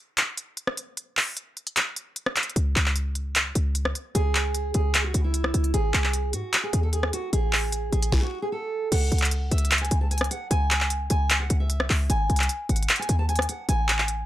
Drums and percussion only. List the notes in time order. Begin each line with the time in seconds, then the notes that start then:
0.18 clap, closed hi-hat
0.37 closed hi-hat
0.57 closed hi-hat
0.67 cross-stick
0.77 closed hi-hat
0.97 closed hi-hat
1.17 clap, open hi-hat
1.37 closed hi-hat
1.57 closed hi-hat
1.67 closed hi-hat
1.77 clap, closed hi-hat
1.96 closed hi-hat
2.16 closed hi-hat
2.26 cross-stick
2.36 clap, closed hi-hat
2.43 closed hi-hat
2.49 closed hi-hat
2.56 closed hi-hat
2.76 clap, closed hi-hat
2.86 clap
2.96 closed hi-hat
3.15 closed hi-hat
3.35 clap, closed hi-hat
3.55 closed hi-hat
3.75 closed hi-hat
3.85 cross-stick
3.95 closed hi-hat
4.15 closed hi-hat
4.35 clap, closed hi-hat
4.55 closed hi-hat
4.74 closed hi-hat
4.94 clap, closed hi-hat
5.14 closed hi-hat
5.34 closed hi-hat
5.44 cross-stick
5.54 closed hi-hat
5.64 closed hi-hat
5.74 closed hi-hat
5.94 clap, closed hi-hat
6.04 clap
6.13 closed hi-hat
6.33 closed hi-hat
6.53 clap, closed hi-hat
6.73 closed hi-hat
6.93 closed hi-hat
7.03 cross-stick
7.13 closed hi-hat
7.33 closed hi-hat
7.53 clap, open hi-hat
7.72 closed hi-hat
7.93 closed hi-hat
8.02 closed hi-hat
8.12 kick, snare
8.92 closed hi-hat, crash
9.12 closed hi-hat
9.18 clap, closed hi-hat
9.25 closed hi-hat
9.31 closed hi-hat
9.52 closed hi-hat
9.58 closed hi-hat
9.65 closed hi-hat
9.71 clap, closed hi-hat
9.78 closed hi-hat
9.85 closed hi-hat
9.91 closed hi-hat
10.11 closed hi-hat
10.18 cross-stick, closed hi-hat
10.24 closed hi-hat
10.31 closed hi-hat
10.51 closed hi-hat
10.71 clap, closed hi-hat
10.81 clap
10.90 closed hi-hat
11.10 closed hi-hat
11.30 clap, closed hi-hat
11.50 closed hi-hat
11.70 closed hi-hat
11.80 cross-stick
11.90 clap, open hi-hat
12.10 closed hi-hat
12.30 closed hi-hat
12.36 clap, closed hi-hat
12.43 closed hi-hat
12.49 closed hi-hat
12.69 closed hi-hat
12.76 closed hi-hat
12.83 closed hi-hat
12.89 clap, closed hi-hat
12.96 closed hi-hat
13.02 closed hi-hat
13.09 closed hi-hat
13.29 closed hi-hat
13.36 cross-stick, closed hi-hat
13.42 closed hi-hat
13.49 closed hi-hat
13.69 closed hi-hat
13.89 clap, closed hi-hat
13.99 clap
14.08 closed hi-hat